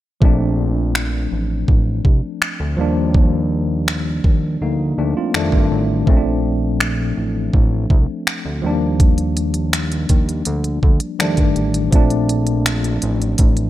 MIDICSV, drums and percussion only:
0, 0, Header, 1, 2, 480
1, 0, Start_track
1, 0, Key_signature, -2, "major"
1, 0, Tempo, 731707
1, 142, Time_signature, 4, 2, 24, 8
1, 8987, End_track
2, 0, Start_track
2, 0, Title_t, "Drums"
2, 142, Note_on_c, 9, 36, 109
2, 208, Note_off_c, 9, 36, 0
2, 624, Note_on_c, 9, 26, 119
2, 689, Note_off_c, 9, 26, 0
2, 1103, Note_on_c, 9, 36, 90
2, 1169, Note_off_c, 9, 36, 0
2, 1343, Note_on_c, 9, 36, 96
2, 1409, Note_off_c, 9, 36, 0
2, 1586, Note_on_c, 9, 26, 111
2, 1651, Note_off_c, 9, 26, 0
2, 2063, Note_on_c, 9, 36, 114
2, 2128, Note_off_c, 9, 36, 0
2, 2545, Note_on_c, 9, 26, 111
2, 2610, Note_off_c, 9, 26, 0
2, 2783, Note_on_c, 9, 36, 96
2, 2848, Note_off_c, 9, 36, 0
2, 3505, Note_on_c, 9, 26, 109
2, 3571, Note_off_c, 9, 26, 0
2, 3623, Note_on_c, 9, 36, 89
2, 3689, Note_off_c, 9, 36, 0
2, 3983, Note_on_c, 9, 36, 112
2, 4048, Note_off_c, 9, 36, 0
2, 4464, Note_on_c, 9, 26, 116
2, 4529, Note_off_c, 9, 26, 0
2, 4943, Note_on_c, 9, 36, 88
2, 5009, Note_off_c, 9, 36, 0
2, 5183, Note_on_c, 9, 36, 100
2, 5249, Note_off_c, 9, 36, 0
2, 5425, Note_on_c, 9, 26, 115
2, 5491, Note_off_c, 9, 26, 0
2, 5903, Note_on_c, 9, 36, 116
2, 5903, Note_on_c, 9, 42, 57
2, 5968, Note_off_c, 9, 36, 0
2, 5969, Note_off_c, 9, 42, 0
2, 6021, Note_on_c, 9, 42, 42
2, 6087, Note_off_c, 9, 42, 0
2, 6145, Note_on_c, 9, 42, 67
2, 6210, Note_off_c, 9, 42, 0
2, 6258, Note_on_c, 9, 42, 55
2, 6323, Note_off_c, 9, 42, 0
2, 6384, Note_on_c, 9, 26, 111
2, 6390, Note_on_c, 9, 42, 68
2, 6449, Note_off_c, 9, 26, 0
2, 6455, Note_off_c, 9, 42, 0
2, 6505, Note_on_c, 9, 42, 48
2, 6571, Note_off_c, 9, 42, 0
2, 6620, Note_on_c, 9, 42, 70
2, 6623, Note_on_c, 9, 36, 92
2, 6686, Note_off_c, 9, 42, 0
2, 6688, Note_off_c, 9, 36, 0
2, 6749, Note_on_c, 9, 42, 43
2, 6814, Note_off_c, 9, 42, 0
2, 6857, Note_on_c, 9, 42, 85
2, 6923, Note_off_c, 9, 42, 0
2, 6981, Note_on_c, 9, 42, 41
2, 7047, Note_off_c, 9, 42, 0
2, 7103, Note_on_c, 9, 36, 98
2, 7169, Note_off_c, 9, 36, 0
2, 7216, Note_on_c, 9, 42, 60
2, 7282, Note_off_c, 9, 42, 0
2, 7346, Note_on_c, 9, 42, 63
2, 7347, Note_on_c, 9, 26, 107
2, 7412, Note_off_c, 9, 26, 0
2, 7412, Note_off_c, 9, 42, 0
2, 7460, Note_on_c, 9, 42, 47
2, 7463, Note_on_c, 9, 36, 90
2, 7525, Note_off_c, 9, 42, 0
2, 7529, Note_off_c, 9, 36, 0
2, 7583, Note_on_c, 9, 42, 38
2, 7648, Note_off_c, 9, 42, 0
2, 7703, Note_on_c, 9, 42, 61
2, 7768, Note_off_c, 9, 42, 0
2, 7823, Note_on_c, 9, 36, 105
2, 7823, Note_on_c, 9, 42, 60
2, 7888, Note_off_c, 9, 36, 0
2, 7888, Note_off_c, 9, 42, 0
2, 7940, Note_on_c, 9, 42, 42
2, 8006, Note_off_c, 9, 42, 0
2, 8064, Note_on_c, 9, 42, 64
2, 8130, Note_off_c, 9, 42, 0
2, 8178, Note_on_c, 9, 42, 51
2, 8243, Note_off_c, 9, 42, 0
2, 8304, Note_on_c, 9, 26, 117
2, 8310, Note_on_c, 9, 42, 68
2, 8370, Note_off_c, 9, 26, 0
2, 8375, Note_off_c, 9, 42, 0
2, 8425, Note_on_c, 9, 42, 46
2, 8491, Note_off_c, 9, 42, 0
2, 8541, Note_on_c, 9, 42, 72
2, 8606, Note_off_c, 9, 42, 0
2, 8670, Note_on_c, 9, 42, 42
2, 8735, Note_off_c, 9, 42, 0
2, 8778, Note_on_c, 9, 42, 82
2, 8783, Note_on_c, 9, 36, 94
2, 8843, Note_off_c, 9, 42, 0
2, 8849, Note_off_c, 9, 36, 0
2, 8900, Note_on_c, 9, 42, 41
2, 8965, Note_off_c, 9, 42, 0
2, 8987, End_track
0, 0, End_of_file